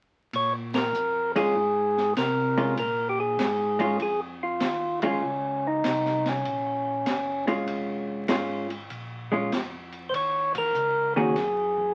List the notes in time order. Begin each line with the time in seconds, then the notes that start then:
0.33 A#2 C#5, kick, ride
0.74 A#4, snare, ride
0.94 F2, hi-hat pedal
1.36 G#3 C#4 F4 G#4, ride
1.56 G#2, kick
1.97 snare
2.16 C3 A#4, kick, snare, hi-hat pedal, ride
2.57 G#3 C#4 F4, ride
2.77 A#2 A#4, kick, ride
3.09 G4
3.20 G#4
3.39 G#2, kick, snare, hi-hat pedal, ride
3.79 G#3 C#4 F4, ride
4.00 F2 G#4, kick, ride
4.43 F4
4.60 D#2, kick, snare, hi-hat pedal, ride
5.02 G#3 C#4 F4, kick, ride
5.24 C#2
5.67 D#4
5.84 C2, kick, snare, hi-hat pedal, ride
6.05 snare
6.26 C#4, snare, ride
6.45 A#1, kick, ride
7.06 F#1, kick, snare, hi-hat pedal, ride
7.47 G#3 C#4 F4, ride
7.67 F1, kick, ride
8.28 G#1 G#3 C#4 F4, kick, snare, hi-hat pedal, ride
8.70 ride
8.90 A#1, kick, ride
9.32 G#3 C#4 F4
9.52 F2, kick, snare, hi-hat pedal, ride
9.92 ride
10.09 D#2 C5
10.14 C#5, kick, ride
10.55 A#4, kick, ride
10.74 C#2, hi-hat pedal
11.16 D#3 A#3 C#4 F#4 G#4
11.36 F#2, kick, snare, ride
11.77 kick